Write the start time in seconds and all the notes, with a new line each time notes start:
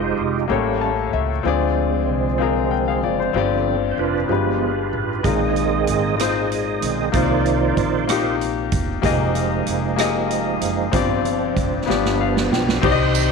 Already playing: F1 G#3 D#4 F4 G4 C5 D#5
0.18 F1
0.48 A1 A2 G3 A#3 C#4 G4 A4 C#5
0.81 A5
1.13 C#2 E5
1.43 D2 D3 F3 G#3 C4 F4 G#4
1.48 D5
2.08 C2
2.38 C4 F4 G#4 A#4
2.71 A#4 G5
2.88 G#4 F5
3.03 F#1 F3 G#3 C4 F4 D5
3.19 C5
3.33 G1 G2 D3 F3 C4 F4 G4
3.38 D5
3.91 C5
3.98 F1 D4 F4 B4
4.28 G1 G2 F3 G#3 B3 F4 G4 B4
4.93 A1
5.23 A#1 A#2 D#3 G#3 C4 D#4 F4 G#4 A#4 D#5, kick, closed hi-hat
5.56 closed hi-hat
5.87 G#1, closed hi-hat
6.17 G#3 D#4 F4 G#4 D#5, cross-stick, closed hi-hat
6.21 C5
6.52 closed hi-hat
6.81 B1 D#3 G#3 C4, closed hi-hat
7.12 C2 C3 D#3 F3 A#3 D#4 F4 C5 D5, kick, closed hi-hat
7.22 D5
7.46 closed hi-hat
7.77 A#1, kick, closed hi-hat
8.07 A#3 D#4 F4 G4, cross-stick, closed hi-hat
8.41 closed hi-hat
8.72 E1, kick, closed hi-hat
9.02 F1 F3 G#3 A#3 D#4 G4 G#4 D#5, kick, closed hi-hat
9.35 closed hi-hat
9.67 F1, closed hi-hat
9.96 A#3 G4 G#4, cross-stick, closed hi-hat
10.00 D#5
10.31 closed hi-hat
10.61 F#1, closed hi-hat
10.92 G1 G2 F3 C4 D4 F4 G4, kick, closed hi-hat
10.96 D5
11.25 closed hi-hat
11.56 F1, kick, closed hi-hat
11.86 G1 G2 F3 B3 D4 F4 G4
11.90 D5, snare
12.05 snare
12.21 F5
12.37 snare
12.51 B1 G5, snare
12.69 snare
12.82 C2 C3 C4 D#4 G4 C5 D5 D#5 C6, kick, crash
12.92 D#5
13.15 ride bell, tambourine